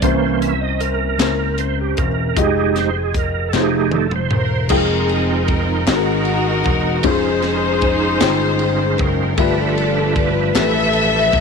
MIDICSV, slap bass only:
0, 0, Header, 1, 2, 480
1, 0, Start_track
1, 0, Key_signature, -4, "minor"
1, 0, Tempo, 779221
1, 15, Time_signature, 6, 3, 24, 8
1, 7025, End_track
2, 0, Start_track
2, 0, Title_t, "Slap bass"
2, 0, Program_c, 0, 36
2, 13, Note_on_c, 0, 36, 83
2, 712, Note_off_c, 0, 36, 0
2, 729, Note_on_c, 0, 37, 90
2, 1190, Note_off_c, 0, 37, 0
2, 1219, Note_on_c, 0, 28, 85
2, 1440, Note_off_c, 0, 28, 0
2, 1458, Note_on_c, 0, 29, 93
2, 2155, Note_off_c, 0, 29, 0
2, 2176, Note_on_c, 0, 29, 102
2, 2633, Note_off_c, 0, 29, 0
2, 2659, Note_on_c, 0, 28, 86
2, 2880, Note_off_c, 0, 28, 0
2, 2896, Note_on_c, 0, 29, 96
2, 3593, Note_off_c, 0, 29, 0
2, 3620, Note_on_c, 0, 32, 101
2, 4075, Note_off_c, 0, 32, 0
2, 4102, Note_on_c, 0, 28, 89
2, 4321, Note_off_c, 0, 28, 0
2, 4336, Note_on_c, 0, 29, 83
2, 5032, Note_off_c, 0, 29, 0
2, 5060, Note_on_c, 0, 31, 98
2, 5513, Note_off_c, 0, 31, 0
2, 5541, Note_on_c, 0, 30, 104
2, 5760, Note_off_c, 0, 30, 0
2, 5776, Note_on_c, 0, 31, 94
2, 6471, Note_off_c, 0, 31, 0
2, 6498, Note_on_c, 0, 33, 97
2, 6952, Note_off_c, 0, 33, 0
2, 6981, Note_on_c, 0, 35, 93
2, 7025, Note_off_c, 0, 35, 0
2, 7025, End_track
0, 0, End_of_file